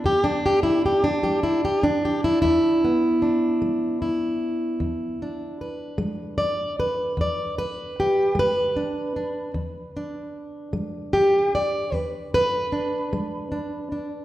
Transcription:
0.00 1.57 B3 soft
0.04 0.76 E2 medium
0.04 0.25 G4 loud
0.24 1.03 D4 medium
0.46 0.63 G4 medium
0.63 0.84 E4 medium
0.86 1.05 G4 medium
1.04 1.82 D4 medium
1.23 1.95 G#3 medium
1.23 1.43 G4 medium
1.43 1.63 E4 medium
1.65 1.84 G4 medium
1.83 2.82 D4 medium
2.05 2.24 G4 medium
2.24 2.41 E4 medium
2.42 3.15 E2 medium
2.42 4.01 E4 loud
2.84 5.22 B3 soft
3.22 4.83 D4 soft
3.62 4.33 G#3 medium
4.02 5.61 E4 soft
4.80 5.51 E2 medium
5.22 8.75 D4 soft
5.61 6.37 B4 soft
5.98 6.70 G#3 medium
6.38 6.78 D5 medium
6.80 7.18 B4 medium
7.17 7.89 E2 medium
7.17 7.58 D5 medium
7.58 8.37 B4 medium
8.00 8.38 G4 medium
8.35 9.07 G#3 medium
8.39 11.54 B4 loud
8.76 9.15 D4 soft
9.16 9.51 D4 soft
9.54 10.26 E2 medium
9.97 12.71 D4 soft
10.73 11.45 G#3 medium
11.13 11.53 G4 medium
11.55 11.94 D5 medium
11.92 12.63 E2 medium
11.92 12.33 B4 medium
12.34 14.25 B4 loud
12.72 13.51 D4 soft
13.13 13.83 G#3 medium
13.52 13.91 D4 soft
13.92 14.25 D4 soft

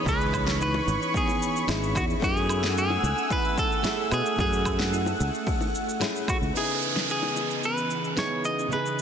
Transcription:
0.00 1.64 B3 medium
0.00 2.19 C#5 medium
0.00 2.19 B5 medium
0.05 0.80 C#2 loud
0.05 1.66 E3 medium
0.05 0.21 C#4 loud
0.05 1.65 D#4 medium
0.05 1.67 G#4 medium
0.05 0.61 B4 loud
0.05 2.20 C#6 loud
0.05 kick loud
0.05 cabasa soft
0.21 cabasa soft
0.33 kick medium
0.33 cabasa medium
0.33 low woodblock medium
0.47 snare medium
0.47 cabasa soft
0.61 0.75 D#4 loud
0.61 1.17 B4 loud
0.61 cabasa soft
0.74 high bongo loud
0.87 0.96 G#1 loud
0.87 cabasa medium
1.02 cabasa soft
1.14 1.39 B3 medium
1.14 1.66 G#4 medium
1.14 kick loud
1.14 cabasa soft
1.28 high bongo medium
1.28 cabasa soft
1.42 cabasa medium
1.56 cabasa soft
1.67 1.97 G#1 loud
1.67 2.19 B3 medium
1.67 1.83 C#4 loud
1.67 2.19 D#4 medium
1.67 2.20 E4 medium
1.67 2.20 G#4 medium
1.67 snare medium
1.67 cabasa soft
1.67 low woodblock medium
1.84 cabasa soft
1.95 2.13 E2 medium
1.95 2.04 F#4 medium
1.95 kick loud
1.95 cabasa medium
1.95 low woodblock medium
2.10 cabasa soft
2.20 2.96 F#2 loud
2.20 3.80 A3 medium
2.20 6.51 A3 medium
2.20 3.81 C#4 medium
2.20 3.82 E4 medium
2.20 2.37 F#4 loud
2.20 6.51 F#5 medium
2.20 4.37 G#5 medium
2.20 6.51 E6 medium
2.20 kick loud
2.20 cabasa soft
2.24 2.74 G#4 loud
2.24 3.83 G#4 medium
2.37 cabasa soft
2.49 cabasa medium
2.49 low woodblock medium
2.64 snare medium
2.64 cabasa soft
2.76 3.01 C#4 medium
2.76 3.32 G#4 loud
2.76 cabasa soft
2.90 high bongo medium
3.03 3.12 C#2 loud
3.03 high bongo medium
3.03 cabasa medium
3.18 cabasa soft
3.30 3.45 E4 loud
3.30 3.59 B4 loud
3.30 kick loud
3.30 cabasa soft
3.45 cabasa soft
3.58 4.13 A4 loud
3.58 kick loud
3.58 cabasa medium
3.72 cabasa soft
3.83 4.35 A3 medium
3.83 4.35 C#4 medium
3.83 4.36 E4 medium
3.83 3.99 F#4 loud
3.83 4.36 G#4 medium
3.83 snare medium
3.83 cabasa soft
4.12 4.20 B2 medium
4.12 4.39 G#4 loud
4.12 cabasa medium
4.12 low woodblock medium
4.26 cabasa soft
4.36 5.12 F#2 loud
4.36 5.97 A3 medium
4.36 5.98 C#4 medium
4.36 4.63 C#4 medium
4.36 5.98 E4 medium
4.36 kick loud
4.36 cabasa soft
4.40 5.98 G#4 medium
4.40 5.99 G#4 medium
4.53 cabasa soft
4.65 kick medium
4.65 cabasa medium
4.65 low woodblock medium
4.79 snare medium
4.79 high bongo medium
4.79 cabasa soft
4.93 5.08 E4 loud
4.93 cabasa soft
5.06 high bongo medium
5.06 cabasa soft
5.20 5.29 C#2 loud
5.20 cabasa medium
5.34 cabasa soft
5.47 5.62 F#4 loud
5.47 kick loud
5.47 cabasa soft
5.61 high bongo medium
5.61 cabasa soft
5.75 cabasa medium
5.89 cabasa soft
6.00 6.51 A3 medium
6.00 6.25 C#4 medium
6.00 6.52 C#4 medium
6.00 6.52 E4 medium
6.00 6.53 G#4 medium
6.00 snare medium
6.00 cabasa soft
6.00 low woodblock medium
6.16 cabasa soft
6.28 6.37 F#4 medium
6.28 kick loud
6.28 cabasa medium
6.28 low woodblock medium
6.42 6.50 C#2 medium
6.42 cabasa soft
6.52 8.13 C#3 medium
6.52 9.02 E3 medium
6.52 8.13 B3 medium
6.52 9.02 B3 medium
6.52 9.02 C#4 medium
6.52 8.14 D#4 medium
6.52 9.02 G#4 medium
6.52 8.70 D#5 medium
6.52 downlifter medium
6.52 cabasa soft
6.56 8.15 E4 medium
6.56 7.10 G#4 medium
6.56 8.15 G#4 medium
6.70 cabasa soft
6.83 cabasa medium
6.96 snare medium
6.96 cabasa soft
7.10 7.65 G#4 medium
7.10 cabasa soft
7.23 high bongo medium
7.36 high bongo medium
7.36 cabasa medium
7.51 cabasa soft
7.64 8.18 B4 medium
7.64 cabasa soft
7.78 cabasa soft
7.91 cabasa medium
8.04 cabasa soft
8.16 8.67 C#3 medium
8.16 8.68 B3 medium
8.16 8.68 D#4 medium
8.16 8.69 E4 medium
8.16 8.69 G#4 medium
8.16 8.45 C#5 medium
8.16 snare medium
8.16 cabasa soft
8.45 8.70 D#5 medium
8.45 cabasa medium
8.59 cabasa soft
8.68 9.02 C#3 medium
8.68 9.02 B3 medium
8.68 9.02 D#4 medium
8.68 cabasa soft
8.72 9.02 E4 medium
8.72 9.02 G#4 medium
8.72 9.02 B4 medium
8.86 cabasa soft

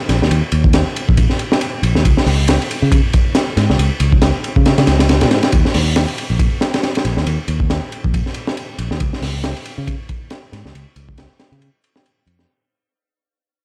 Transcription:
0.09 0.19 A#1 medium
0.09 snare soft
0.09 ride medium
0.21 0.29 D#2 medium
0.21 snare medium
0.31 0.41 D#2 medium
0.31 ride medium
0.52 0.83 D#2 medium
0.52 ride medium
0.64 kick loud
0.73 snare loud
0.73 ride medium
0.96 ride medium
1.09 1.25 A#1 medium
1.09 kick loud
1.17 kick loud
1.17 ride medium
1.30 snare soft
1.39 ride medium
1.52 snare loud
1.61 ride medium
1.83 1.93 A#1 medium
1.83 ride medium
1.95 2.03 D#2 medium
1.95 snare medium
2.05 2.15 C#2 loud
2.05 kick loud
2.05 ride medium
2.17 snare medium
2.26 2.57 C#2 medium
2.26 snare soft
2.26 open hi-hat medium
2.48 snare loud
2.48 ride loud
2.62 ride soft
2.71 ride medium
2.82 2.99 C#3 medium
2.92 kick loud
2.92 ride medium
3.13 kick loud
3.13 ride medium
3.35 snare loud
3.35 ride medium
3.57 3.67 G#2 medium
3.57 snare soft
3.57 ride medium
3.69 3.77 C#2 medium
3.69 snare soft
3.78 3.88 C#2 loud
3.78 ride medium
4.00 4.30 C#2 medium
4.00 ride medium
4.12 kick medium
4.22 snare loud
4.22 ride medium
4.44 ride medium
4.56 4.73 C#3 medium
4.56 kick loud
4.66 snare loud
4.66 ride medium
4.78 4.85 C#3 medium
4.78 snare medium
4.78 ride medium
4.87 5.23 C#2 loud
4.87 snare loud
4.87 ride medium
4.99 snare loud
4.99 ride medium
5.09 snare loud
5.09 ride medium
5.21 5.31 C#3 medium
5.21 snare loud
5.21 ride medium
5.31 5.41 G#2 medium
5.31 snare loud
5.31 ride medium
5.43 snare loud
5.43 ride medium
5.52 5.63 D#2 loud
5.52 kick loud
5.52 ride medium
5.65 snare medium
5.74 6.05 D#2 medium
5.74 snare soft
5.74 open hi-hat medium
5.96 snare loud
5.96 ride medium
6.08 ride soft
6.18 ride medium
6.30 6.47 A#1 medium
6.39 kick loud
6.39 ride medium
6.61 snare loud
6.61 ride medium
6.74 snare loud
6.74 ride medium
6.83 snare loud
6.83 ride medium
6.95 snare loud
6.95 ride medium
7.05 7.15 A#1 medium
7.05 snare soft
7.05 ride medium
7.17 7.25 D#2 medium
7.17 snare medium
7.26 7.36 D#2 loud
7.26 ride medium
7.48 7.78 D#2 medium
7.48 ride medium
7.60 kick medium
7.70 snare loud
7.70 ride medium
7.92 ride medium
8.04 8.21 A#1 medium
8.04 kick loud
8.14 kick loud
8.14 ride medium
8.26 snare soft
8.34 ride medium
8.47 snare loud
8.57 ride medium
8.78 8.88 A#1 medium
8.78 ride medium
8.91 8.98 D#2 medium
8.91 snare medium
9.00 9.10 C#2 loud
9.00 kick loud
9.00 ride medium
9.13 snare medium
9.22 9.52 C#2 medium
9.22 snare soft
9.22 open hi-hat medium
9.44 snare loud
9.44 ride medium
9.57 ride soft
9.65 ride medium
9.78 9.95 C#3 medium
9.87 kick loud
9.87 ride medium
10.09 kick medium
10.09 ride medium
10.30 snare loud
10.30 ride medium
10.52 10.62 G#2 medium
10.52 snare soft
10.52 ride medium
10.65 10.72 C#2 medium
10.65 snare soft
10.74 10.84 C#2 loud
10.74 ride medium
10.96 11.26 C#2 medium
10.96 ride medium
11.09 kick medium
11.18 snare loud
11.18 ride medium
11.40 snare medium
11.40 ride medium
11.52 11.69 C#3 medium
11.52 ride soft
11.62 ride medium
11.84 ride medium
11.96 snare loud
12.06 ride medium
12.26 12.44 F2 medium
12.26 ride medium
12.39 snare medium

